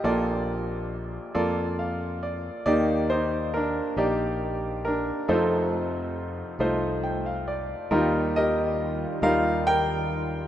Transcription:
Already playing: grand piano A#3 F4 G4 A4 D5 D#5 F5
0.04 grand piano A#1 A#2 A#3 F4 A4 D5, fretless electric bass A#1
1.35 fretless electric bass F2, grand piano A#3 F4 A4 D5
1.79 grand piano F5
2.23 grand piano D5
2.66 fretless electric bass D#2, grand piano D#2 D#3 A#3 D#4 G4 D5
3.10 grand piano D#4 C5
3.54 grand piano D4 A#4
3.96 fretless electric bass A#1, grand piano A#3 D#4 G4 D5
4.85 grand piano D4 A#4
5.28 grand piano F1 F2 A3 C4 D#4 F4 A4 C5, fretless electric bass F2
6.59 fretless electric bass C2, grand piano A3 D#4 F4 C5
7.03 grand piano G5
7.26 grand piano F5
7.48 grand piano D5
7.90 fretless electric bass D#2, grand piano D#2 D#3 G3 D#4 F4 G4 A#4, analog synth pad D#3 G3 F4
8.36 grand piano G4 A#4 D#5
9.22 fretless electric bass D#2, grand piano G3 D#4 F4 A#4 F5
9.67 grand piano A#4 G5

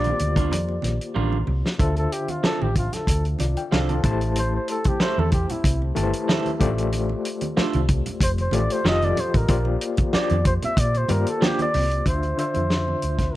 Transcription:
Already playing: fingered electric bass A#1, reed electric piano A#3 F4 G4 C5 D5, flugelhorn D5
0.04 closed hi-hat, high conga
0.19 fingered electric bass D2, closed hi-hat, low conga
0.36 clean electric guitar G3 D4 F4 A#4, kick, closed hi-hat, low conga
0.51 fingered electric bass F2, closed hi-hat, high conga
0.69 muted conga
0.82 fingered electric bass A#1, snare, closed hi-hat, high conga
1.01 closed hi-hat
1.15 fingered electric bass A1, clean electric guitar G3 D4 F4 A#4, high conga
1.32 high conga
1.47 fingered electric bass C2, low conga
1.66 snare
1.78 fingered electric bass D2, reed electric piano D3 D4 F4 C5 E5, flugelhorn A4, kick, closed hi-hat, muted conga
1.96 flugelhorn A4, closed hi-hat, muted conga
2.12 flugelhorn G4, closed hi-hat
2.28 flugelhorn F4, closed hi-hat, high conga
2.43 clean electric guitar F3 C4 D4 A4, flugelhorn A4, muted fingered electric bass stroke, snare
2.62 fingered electric bass A1, flugelhorn G4, muted conga, high conga
2.75 flugelhorn F4, kick, closed hi-hat
2.93 flugelhorn A4, snare, closed hi-hat, low conga
3.07 fingered electric bass D2, kick, closed hi-hat
3.25 closed hi-hat
3.39 fingered electric bass C2, reed electric piano F4 D5, snare, closed hi-hat, high conga
3.57 reed electric piano G5, closed hi-hat
3.71 fingered electric bass C2, clean electric guitar F3 C4 D4 A4, reed electric piano A4 F5, snare, muted conga, high conga
3.89 reed electric piano C5 A5, closed hi-hat, muted conga, high conga
4.03 fingered electric bass A1, reed electric piano A3 E4 G4 C5 A5, kick, closed hi-hat, low conga
4.21 closed hi-hat
4.36 flugelhorn C5, closed hi-hat, muted conga
4.56 flugelhorn C5
4.68 flugelhorn A4, closed hi-hat
4.84 kick, closed hi-hat, high conga
4.88 flugelhorn G4
5.00 clean electric guitar G3 C4 E4 A4, flugelhorn C5, muted fingered electric bass stroke, snare, muted conga
5.18 fingered electric bass E2, flugelhorn A4, muted conga, high conga
5.32 flugelhorn G4, kick, closed hi-hat
5.49 flugelhorn E4, closed hi-hat, low conga
5.64 fingered electric bass C2, kick, closed hi-hat, muted conga
5.82 muted conga
5.95 fingered electric bass G1, reed electric piano A3 E4 G4 B4 A5, closed hi-hat, high conga
6.03 reed electric piano C5
6.13 closed hi-hat
6.28 clean electric guitar G3 C4 E4 A4, snare, high conga
6.46 closed hi-hat, high conga
6.59 fingered electric bass A1, reed electric piano A3 F4 G4 C5 D5, kick, closed hi-hat, low conga
6.78 closed hi-hat
6.92 closed hi-hat, muted conga
7.09 muted conga
7.25 closed hi-hat
7.41 closed hi-hat, high conga
7.57 clean electric guitar A3 D4 F4 A4, muted fingered electric bass stroke, snare
7.73 fingered electric bass C2, closed hi-hat, muted conga, high conga
7.88 kick, closed hi-hat
8.06 closed hi-hat, low conga
8.21 fingered electric bass F1, flugelhorn C5, kick, closed hi-hat
8.38 flugelhorn C5, closed hi-hat, muted conga
8.51 fingered electric bass A1, reed electric piano A3 F4 G4 C5 D5, closed hi-hat, high conga
8.56 flugelhorn D5
8.70 flugelhorn C5, closed hi-hat
8.85 fingered electric bass F1, reed electric piano F3 F4 G4 A4 D#5, clean electric guitar F3 C4 D#4 A4, flugelhorn D#5, snare, high conga
9.02 flugelhorn D5, closed hi-hat, high conga
9.16 flugelhorn C5, closed hi-hat, low conga
9.34 fingered electric bass A1, flugelhorn A#4, kick, closed hi-hat
9.48 fingered electric bass A#1, reed electric piano A#3 F4 G4 C5 D5, kick, closed hi-hat
9.65 muted conga
9.81 closed hi-hat
9.97 kick, closed hi-hat, high conga
10.13 clean electric guitar F3 A#3 D4 G4, flugelhorn D5, muted fingered electric bass stroke, snare
10.29 fingered electric bass F2, closed hi-hat, muted conga, high conga
10.45 flugelhorn C5, kick, closed hi-hat
10.62 flugelhorn E5, closed hi-hat, low conga
10.77 fingered electric bass A#2, flugelhorn D5, kick, closed hi-hat, muted conga
10.94 flugelhorn C5, closed hi-hat, muted conga
11.08 fingered electric bass G2, reed electric piano A#3 F4 G4 C5 D5, flugelhorn A#4, closed hi-hat, high conga
11.27 flugelhorn A4, closed hi-hat
11.41 clean electric guitar F3 A#3 D4 G4, flugelhorn G4, snare, muted conga, high conga
11.59 flugelhorn D5, closed hi-hat, muted conga, high conga
11.74 fingered electric bass C2, open hi-hat, low conga
11.91 closed hi-hat
12.06 fingered electric bass D2, reed electric piano D3 D4 F4 C5 E5, flugelhorn C5, kick, closed hi-hat, muted conga
12.23 closed hi-hat, muted conga
12.38 reed electric piano D3 D4 F4 C5 E5, flugelhorn C5, closed hi-hat
12.54 fingered electric bass F2, closed hi-hat, high conga
12.70 snare
12.88 muted conga, high conga
13.02 fingered electric bass D2, closed hi-hat
13.19 kick, snare, closed hi-hat, low conga

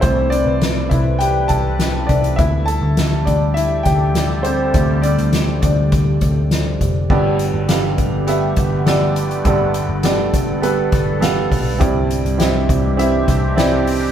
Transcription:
Already playing: analog synth pad C3 E3 A3 E4, grand piano E3 A3 C4 D4 E4 D5 E5
0.01 picked electric bass C2, grand piano E3 A3 C4 C5, analog synth pad B4, kick, closed hi-hat
0.30 grand piano D4 D5, closed hi-hat
0.46 picked electric bass C2
0.62 snare, closed hi-hat
0.89 picked electric bass C2, grand piano E4 E5, kick, closed hi-hat
1.19 grand piano G4 G5, closed hi-hat
1.48 picked electric bass C2, grand piano A4 A5, kick, closed hi-hat
1.79 snare, closed hi-hat
2.07 picked electric bass C2, grand piano D4 D5, kick, closed hi-hat
2.24 closed hi-hat
2.36 picked electric bass D2, analog synth pad D3 G3 G4 A4, grand piano E4 E5, kick, closed hi-hat
2.66 grand piano A4 A5, closed hi-hat
2.82 picked electric bass D2
2.97 snare, closed hi-hat
3.25 picked electric bass D2, grand piano G3 A3 D4 D5, kick, closed hi-hat
3.54 grand piano E4 E5, closed hi-hat
3.83 picked electric bass D2, grand piano G4 G5, kick, snare, closed hi-hat
4.15 snare, closed hi-hat
4.43 grand piano C4 C5, closed hi-hat
4.73 picked electric bass D2, grand piano G3 A3 D4, kick, closed hi-hat
5.02 grand piano D4 D5, closed hi-hat
5.18 picked electric bass D2, closed hi-hat
5.33 snare, closed hi-hat
5.62 picked electric bass D2, grand piano D4 D5, kick, closed hi-hat
5.92 kick, closed hi-hat
6.21 picked electric bass D2, kick, closed hi-hat
6.51 snare, closed hi-hat
6.81 picked electric bass F1, kick, closed hi-hat
7.10 picked electric bass G1, grand piano G2 D3 B3 G4 A4 D5, analog synth pad D3 G3 A3 B3 G4, kick, crash
7.39 closed hi-hat
7.54 picked electric bass G1
7.68 grand piano B3 G4 A4 F5, snare, closed hi-hat
7.98 picked electric bass G1, kick, closed hi-hat
8.27 grand piano B3 G4 A4 E5, closed hi-hat
8.56 picked electric bass G1, kick, closed hi-hat
8.86 grand piano B3 G4 A4 D5, snare, closed hi-hat
9.16 closed hi-hat
9.31 closed hi-hat
9.45 picked electric bass G1, grand piano G2 D3 B3 G4 A4 D5, analog synth pad A4, kick, closed hi-hat
9.74 closed hi-hat
9.89 picked electric bass G1
10.03 grand piano B3 G4 A4 D5, snare, closed hi-hat
10.34 picked electric bass G1, kick, closed hi-hat
10.61 grand piano B3 G4 A4 B4, closed hi-hat
10.92 picked electric bass G1, kick, snare, closed hi-hat
11.20 grand piano B3 G4 A4 F5, snare, closed hi-hat
11.52 picked electric bass B1, kick, open hi-hat
11.79 picked electric bass C2, grand piano G2 C4 E4 G4 D5, analog synth pad E3 C4 D4 G4, kick, closed hi-hat
12.11 closed hi-hat
12.25 picked electric bass C2, closed hi-hat
12.38 grand piano C4 E4 G4 D#5, snare, closed hi-hat
12.46 grand piano E5
12.69 picked electric bass C2, kick, closed hi-hat
12.97 grand piano C4 E4 G4 E5, closed hi-hat
13.28 picked electric bass C2, kick, snare, closed hi-hat
13.56 grand piano C4 E4 G4 D5, snare, closed hi-hat
13.87 open hi-hat

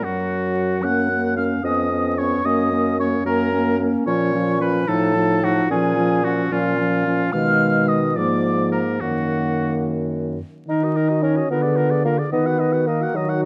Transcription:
0.02 bassoon F#2, clarinet F#3, french horn F#3, oboe F#4, flute F#5
0.82 bassoon F#2, french horn A#3, clarinet C#4, oboe F#5, flute F#6
1.10 french horn A#3, clarinet C#4
1.36 french horn A#3, clarinet C#4, oboe F5, flute F6
1.64 bassoon F2, french horn B3, clarinet C#4, oboe D#5, flute D#6
1.92 french horn B3, clarinet C#4
2.18 french horn B3, clarinet C#4, oboe C#5, flute C#6
2.44 bassoon F#2, french horn A#3, clarinet C#4, oboe D#5, flute D#6
2.72 french horn A#3, clarinet C#4
2.99 french horn A#3, clarinet C#4, oboe C#5, flute C#6
3.25 bassoon F#2, french horn A#3, clarinet C#4, oboe A#4, flute A#5
3.53 french horn A#3, clarinet C#4
3.80 french horn A#3, clarinet C#4
4.06 bassoon A#2, french horn F3, clarinet C#4, oboe C#5, flute C#6
4.34 french horn F3, clarinet C#4
4.60 french horn F3, clarinet C#4, oboe B4, flute B5
4.87 bassoon A2, french horn F3, clarinet D#4, oboe A4, flute A5
5.15 french horn F3, clarinet D#4
5.43 french horn F3, clarinet D#4, oboe F#4, flute F#5
5.70 bassoon A#2, french horn F3, clarinet C#4, oboe G#4, flute G#5
5.97 french horn F3, clarinet C#4
6.24 french horn F3, clarinet C#4, oboe F#4, flute F#5
6.52 bassoon A#2, french horn F3, clarinet C#4, oboe F4, flute F5
6.78 french horn F3, clarinet C#4
7.06 french horn F3, clarinet C#4
7.32 bassoon B2, french horn D#3, clarinet G#3, oboe F5, flute F6
7.88 oboe D#5, flute D#6
8.16 bassoon G#2, french horn F3, clarinet A#3, oboe D5, flute D6
8.72 oboe A#4, flute A#5
9.01 bassoon F#2, french horn D#3, clarinet A#3, oboe F#4, flute F#5
10.68 french horn D#3, clarinet D#4, bassoon D#4, oboe A#4, flute D#5
10.83 clarinet F#4, oboe D#5
10.96 clarinet D#4, oboe A#4
11.09 clarinet F#4, oboe D#5
11.22 bassoon C#4, clarinet D#4, oboe A#4, flute C#5
11.37 clarinet F#4, oboe D#5
11.50 french horn D3, bassoon B3, clarinet F4, oboe A#4, flute B4
11.63 clarinet G#4, oboe D5
11.76 clarinet F4, oboe A#4
11.91 clarinet G#4, oboe D5
12.04 bassoon A#3, clarinet F4, flute A#4, oboe A#4
12.18 clarinet G#4, oboe D5
12.31 french horn D#3, bassoon B3, clarinet D#4, flute B4, oboe D#5
12.45 clarinet F#4, oboe F#5
12.59 clarinet D#4, oboe D#5
12.72 clarinet F#4, oboe F#5
12.87 bassoon A#3, clarinet D#4, flute A#4, oboe D#5
13.01 clarinet F#4, oboe F#5
13.14 french horn D#3, bassoon F#3, clarinet D#4, flute F#4, oboe D#5
13.28 clarinet F#4, oboe F#5
13.42 clarinet D#4

